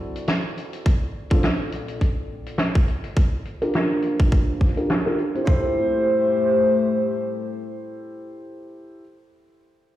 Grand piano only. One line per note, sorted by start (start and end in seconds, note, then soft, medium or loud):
0.00 0.84 C4 medium
0.00 0.84 E4 medium
0.00 0.84 F#4 medium
0.00 0.84 A4 medium
1.31 1.42 C4 medium
1.31 1.42 D4 medium
1.31 1.42 F4 medium
1.31 1.42 A4 loud
3.62 4.74 D4 medium
3.62 4.74 F4 medium
3.62 4.74 G4 medium
3.62 4.74 A#4 medium
4.77 4.88 D4 medium
4.77 4.88 F4 medium
4.77 4.88 G4 medium
4.77 4.88 A#4 medium
5.06 5.17 D4 medium
5.06 5.16 F4 medium
5.06 5.17 G4 medium
5.06 5.17 A#4 loud
5.35 5.76 C4 medium
5.35 5.46 E4 medium
5.35 5.46 G4 medium
5.35 5.46 C5 medium
5.47 9.01 E4 medium
5.47 9.01 G4 medium
5.47 9.01 A4 medium
5.47 9.01 C5 medium